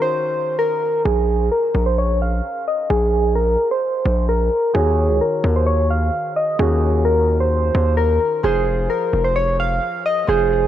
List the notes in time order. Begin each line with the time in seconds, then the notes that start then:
Already playing: D#3 C#4 D#4 F#4
0.02 C5
0.59 A#4
1.05 A#1 G#4
1.51 A#4
1.75 A#1
1.86 C5
1.98 C#5
2.22 F5
2.68 D#5
2.90 A#1 G#4
3.35 A#4
3.71 C5
4.05 A#1
4.29 A#4
4.73 D#2 D#3 D#4 F#4 G#4 C#5
5.09 C#2
5.21 A#4
5.44 D#2
5.56 C5
5.66 C#5
5.90 F5
6.36 D#5
6.59 D#2 D#3 C#4 D#4 F#4 G#4
7.05 A#4
7.40 C5
7.75 D#2
7.97 A#4
8.43 F1 F3 F4 G#4 C5
8.90 A#4
9.13 F1
9.24 C5
9.36 C#5
9.60 F5
10.06 D#5
10.27 F1 F3 F4 G#4 C5